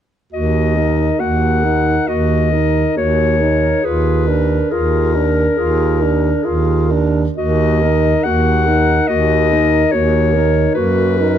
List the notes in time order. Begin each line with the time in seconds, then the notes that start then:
0.32 D#2 A#3 F#4 D#5
0.76 D#4 A#4
1.19 D#2 A#3 F#4 F#5
1.63 D#4 A#4
2.07 D#2 A#3 F#4 D#5
2.52 D#4 A#4
2.96 D#2 A#3 F#4 C#5
3.39 D#4 A#4
3.82 D#2 F4 G#4 B4
4.27 D4 A#4
4.71 D#2 F4 G#4 A#4
5.13 D4 A#4
5.56 D#2 F4 G#4
6.00 D4 A#4
6.43 D#2 F4 G#4
6.89 D4 A#4
7.37 D#2 A#3 F#4 D#5
7.81 D#4 A#4
8.23 D#2 A#3 F#4 F#5
8.66 D#4 A#4
9.08 D#2 A#3 F#4 D#5
9.51 D#4 A#4
9.92 D#2 A#3 F#4 C#5
10.33 D#4 A#4
10.74 F#2 A#3 F#4 B4
11.17 D#4 A#4